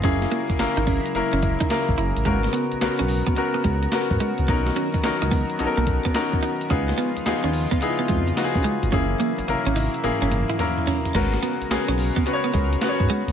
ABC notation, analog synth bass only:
X:1
M:4/4
L:1/16
Q:"Swing 16ths" 1/4=108
K:G#m
V:1 name="Analog synth bass" clef=bass
F,,,2 z G,,, G,,, G,,,2 z F,,, F,,,2 z2 A,,, F,,, =A,,, | G,,,2 z B,,, B,,, B,,,2 z3 C,,2 z G,, z ^B,,, | B,,,2 z C,, C,, C,,2 z B,,, B,,,2 z4 z | C,,2 z D,, D,, D,,2 z3 ^E,,2 z C, z =G,,, |
F,,,2 z G,,, G,,, G,,,2 z F,,, F,,,2 z4 z | G,,,2 z B,,, B,,, B,,,2 z3 C,,2 z G,, z ^B,,, |]